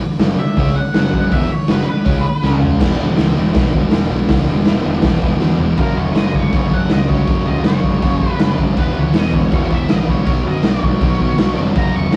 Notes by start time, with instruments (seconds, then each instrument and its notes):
0.00 muted fingered electric bass stroke, muted distorted electric guitar stroke
0.19 fingered electric bass F#1, distorted electric guitar F#2 C#3 F#3, snare, open hi-hat
0.38 lead electric guitar E5, muted fingered electric bass stroke, muted distorted electric guitar stroke
0.57 fingered electric bass C#2, distorted electric guitar C#3 G#3 C#4, kick, open hi-hat
0.76 lead electric guitar F#5, muted fingered electric bass stroke, muted distorted electric guitar stroke
0.94 fingered electric bass F#1, distorted electric guitar F#2 C#3 F#3, snare, open hi-hat
1.13 kick
1.31 fingered electric bass E1, distorted electric guitar E2 B2 E3, lead electric guitar E5, kick, open hi-hat
1.50 lead electric guitar C#5, muted distorted electric guitar stroke, muted fingered electric bass stroke
1.68 fingered electric bass F#1, distorted electric guitar F#2 C#3 F#3, lead electric guitar B4, snare, open hi-hat
1.87 lead electric guitar B4, muted distorted electric guitar stroke, muted fingered electric bass stroke
2.05 fingered electric bass C#2, distorted electric guitar C#3 G#3 C#4, kick, open hi-hat
2.24 muted fingered electric bass stroke, muted distorted electric guitar stroke
2.42 fingered electric bass C#2, distorted electric guitar C#3 G#3 C#4, snare
2.62 floor tom
2.79 fingered electric bass E1, distorted electric guitar E2 B2 E3, kick, snare, crash
2.98 fingered electric bass E1, distorted electric guitar E2 B2 E3
3.16 fingered electric bass C#2, distorted electric guitar E2 B2 E3, snare, open hi-hat
3.35 fingered electric bass E1, distorted electric guitar E2 B2 E3
3.53 fingered electric bass B1, distorted electric guitar E2 B2 E3, kick, snare, open hi-hat
3.72 fingered electric bass E1, distorted electric guitar E2 B2 E3, kick
3.91 fingered electric bass E1, distorted electric guitar E2 B2 E3, snare, open hi-hat
4.09 fingered electric bass B1, distorted electric guitar E2 B2 E3
4.27 fingered electric bass C#2, distorted electric guitar E2 B2 E3, kick, snare, open hi-hat
4.46 fingered electric bass E1, distorted electric guitar E2 B2 E3
4.65 fingered electric bass E1, distorted electric guitar E2 B2 E3, snare, open hi-hat
4.84 fingered electric bass E1, distorted electric guitar E2 B2 E3
5.01 fingered electric bass E1, distorted electric guitar E2 B2 E3, kick, snare, open hi-hat
5.21 fingered electric bass E1, distorted electric guitar E2 B2 E3, kick
5.40 distorted electric guitar E2 B2 E3, fingered electric bass E2, snare
5.59 fingered electric bass E1, distorted electric guitar E2 B2 E3, floor tom
5.76 fingered electric bass F#1, distorted electric guitar F#2 C#3 F#3, lead electric guitar A#4, kick, crash
5.95 fingered electric bass E1, distorted electric guitar C#3 F#3, lead electric guitar C#5
6.13 fingered electric bass F#1, distorted electric guitar F#2 C#3 F#3, lead electric guitar D#5, snare, crash
6.34 lead electric guitar C#5, kick
6.51 fingered electric bass F#1, distorted electric guitar F#2 C#3 F#3, lead electric guitar C#5, kick, crash
6.71 fingered electric bass F#1, distorted electric guitar C#3 F#3, lead electric guitar F#5, kick
6.89 fingered electric bass C#2, distorted electric guitar F#2 C#3 F#3, lead electric guitar D#5, snare, crash
7.08 distorted electric guitar C#3 F#3, lead electric guitar C#5, kick
7.27 fingered electric bass F#1, distorted electric guitar F#2 C#3 F#3, kick, crash
7.46 fingered electric bass C#2, distorted electric guitar C#3 F#3, lead electric guitar D#5
7.64 fingered electric bass F#1, distorted electric guitar F#2 C#3 F#3, lead electric guitar C#5, snare, crash
7.83 fingered electric bass F#1, kick
8.02 fingered electric bass F#1, distorted electric guitar F#2 C#3 F#3, kick, crash
8.20 distorted electric guitar C#3 F#3, kick
8.29 lead electric guitar B4
8.38 fingered electric bass F#1, distorted electric guitar F#2 C#3 F#3, snare, crash
8.57 fingered electric bass F#1, distorted electric guitar C#3 F#3, kick
8.74 fingered electric bass E1, distorted electric guitar E2 B2 E3, kick, crash
8.79 lead electric guitar B4
8.93 fingered electric bass C#2, distorted electric guitar B2 E3
8.99 lead electric guitar C#5
9.12 fingered electric bass E1, distorted electric guitar E2 B2 E3, snare, crash
9.18 lead electric guitar D#5
9.33 lead electric guitar C#5, kick
9.50 fingered electric bass E1, distorted electric guitar E2 B2 E3, kick, crash
9.55 lead electric guitar C#5
9.69 fingered electric bass E1, distorted electric guitar B2 E3, lead electric guitar E5, kick
9.87 fingered electric bass B1, distorted electric guitar E2 B2 E3, snare, crash
9.92 lead electric guitar D#5
10.06 distorted electric guitar B2 E3, lead electric guitar C#5, kick
10.24 fingered electric bass B1, distorted electric guitar B2 F#3 B3, kick, crash
10.44 fingered electric bass F#2, distorted electric guitar F#3 B3
10.48 lead electric guitar D#5
10.62 fingered electric bass B1, distorted electric guitar B2 F#3, snare, crash
10.67 distorted electric guitar B3, lead electric guitar C#5
10.82 fingered electric bass B1, kick
10.99 fingered electric bass B1, distorted electric guitar B2 F#3 B3, kick, crash
11.18 distorted electric guitar F#3 B3, kick
11.36 fingered electric bass B1, distorted electric guitar B2 F#3 B3, snare, crash
11.54 fingered electric bass F1, distorted electric guitar F#3 B3
11.73 fingered electric bass F#1, distorted electric guitar F#2 C#3 F#3, kick, crash
11.78 lead electric guitar A#5
11.92 fingered electric bass E1, distorted electric guitar C#3 F#3, lead electric guitar C#6
12.11 fingered electric bass F#1, distorted electric guitar F#2 C#3, snare, crash